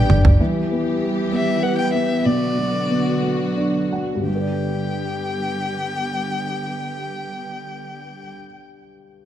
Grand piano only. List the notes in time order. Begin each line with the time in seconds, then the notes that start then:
Already playing: G3 D4 B4 D5
0.10 D5
0.40 E3
0.71 B3
1.01 G4
1.32 B3
1.63 B4
1.94 B3
2.25 B2
2.58 F#3
2.90 B3
3.23 F#3
3.57 D4 D5
3.92 F#3 F#5
4.15 G2
4.20 D3
4.26 G3
4.30 D4
4.35 B4
4.40 D5